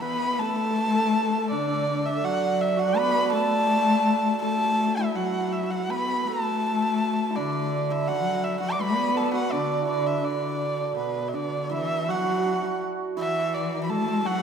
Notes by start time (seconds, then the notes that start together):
Already playing: E4
0.00 B3 B4 B5
0.39 A3 A4 A5
0.48 A4
0.56 A4
0.64 A4
0.71 A4
0.78 A4
0.87 A4
0.93 A4
1.00 A4
1.07 A4
1.14 A4
1.23 A4
1.30 A4
1.38 A4
1.51 D3 D4 D5
1.59 D4
1.67 D4
1.74 D4
1.82 D4
1.89 D4
1.95 D4
2.03 D4 E5
2.08 D4
2.16 A4
2.24 F#3 F#4 F#5
2.61 E5
2.77 F#4 F#5
2.88 D5
2.94 B3 B4 B5
3.25 B4
3.32 A3 A4 A5
4.42 A3 A4 A5
4.49 A4
4.57 A4
4.65 A4
4.72 A4
4.80 A4
4.88 A4
4.97 E4 E5
5.16 F#3 F#4 F#5
5.25 F#4
5.32 F#4
5.41 F#4
5.48 F#4
5.52 F#4 E5
5.63 F#4
5.71 F#4 F#5
5.78 F#4
5.90 B3 B4 B5
6.27 A3 A4 A5
7.30 E4
7.36 D3 D4 D5
7.91 E4 E5
8.08 F#3 F#4 F#5
8.44 E5
8.60 F#3 F#4 F#5
8.72 D5 D6
8.80 B3 B4 B5
9.16 A4 A5
9.33 F#4 F#5
9.51 D3 D4 D5
9.82 E4
9.87 D3 D4 D5
10.07 E5
10.22 D3 D4 D5
10.96 B2 B3 B4
11.28 E5
11.33 D3 D4 D5
11.71 E3 E4 E5
12.08 F#3 F#4 F#5
12.16 F#4
12.24 F#4
12.31 F#4
12.38 F#4
12.46 F#4
12.53 F#4
12.63 F#4
13.16 E3 E4 E5
13.54 D5
13.83 B5
13.90 A3 A4 A5
14.25 F#3 F#4 F#5
14.32 F#4
14.39 F#4